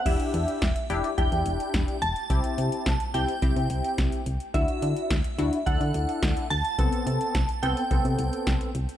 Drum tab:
CC |x---------------|----------------|----------------|----------------|
HH |xxxxxxxxxxxxxxxx|xxxxxxxxxxxxxxxx|xxxxxxxxxxxxxxxx|xxxxxxxxxxxxxxxx|
SD |----o-------o---|----o-------o---|----o-------o---|----o-------o---|
BD |o---o---o---o---|o---o---o---o---|o---o---o---o---|o---o---o---o---|